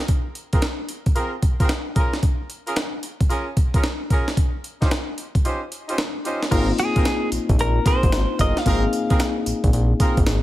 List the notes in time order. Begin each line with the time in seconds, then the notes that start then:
0.08 kick, closed hi-hat
0.35 closed hi-hat
0.52 C4 F4 G#4 A#4, kick, closed hi-hat
0.62 snare, closed hi-hat
0.89 closed hi-hat
1.06 kick, closed hi-hat
1.15 C4 F4 G#4 A#4, closed hi-hat
1.43 kick, closed hi-hat
1.60 C4 F4 G#4 A#4, kick, closed hi-hat
1.69 snare, closed hi-hat
1.96 C#4 F4 G#4 A#4, kick, closed hi-hat
2.13 snare, closed hi-hat
2.23 kick, closed hi-hat
2.50 closed hi-hat
2.67 C#4 F4 G#4 A#4, closed hi-hat
2.76 snare, closed hi-hat
3.03 closed hi-hat
3.21 kick, closed hi-hat
3.29 C#4 F4 G#4 A#4, closed hi-hat
3.57 kick, closed hi-hat
3.74 C#4 F4 G#4 A#4, kick, closed hi-hat
3.84 snare, closed hi-hat
4.10 C#4 F4 G#4 A#4, kick, closed hi-hat
4.28 snare, closed hi-hat
4.37 kick, closed hi-hat
4.64 closed hi-hat
4.81 C#4 D#4 F4 G4 C5, kick, snare, closed hi-hat
4.91 snare, closed hi-hat
5.18 closed hi-hat
5.35 kick, closed hi-hat
5.44 C#4 D#4 F4 G4 C5, closed hi-hat
5.72 closed hi-hat
5.88 C#4 D#4 F4 G4 C5, closed hi-hat
5.98 snare, closed hi-hat
6.24 C#4 D#4 F4 G4 C5, closed hi-hat
6.43 snare, closed hi-hat
6.51 G#1 A#3 C4 D#4 F4 G#4 A#4, kick, closed hi-hat, crash, tambourine
6.78 G#4, closed hi-hat, tambourine
6.95 A#1 C4 F4 G#4 A#4, kick, closed hi-hat
7.05 snare, closed hi-hat, tambourine
7.32 A#1, closed hi-hat, tambourine
7.49 A#1, kick, closed hi-hat
7.58 A#1 A#4, closed hi-hat
7.85 C4 F4 G#4 A#4 C5, kick, closed hi-hat, tambourine
8.03 G#1, kick, closed hi-hat
8.12 G#1, snare, closed hi-hat, tambourine
8.39 G1 C4 F4 G#4 A#4 D#5, kick, closed hi-hat, tambourine
8.57 F5, snare, closed hi-hat
8.65 G#1 A#3 C4 D#4 F4 G#4 A#4, kick, closed hi-hat, tambourine
8.93 closed hi-hat, tambourine
9.10 A#1 C4 F4 G#4 A#4, kick, closed hi-hat
9.20 snare, closed hi-hat, tambourine
9.46 A#1, closed hi-hat, tambourine
9.64 A#1, kick, closed hi-hat
9.73 A#1, closed hi-hat
10.00 C4 F4 G#4 A#4, kick, closed hi-hat, tambourine
10.17 G#1, kick, closed hi-hat
10.26 G#1, snare, closed hi-hat, tambourine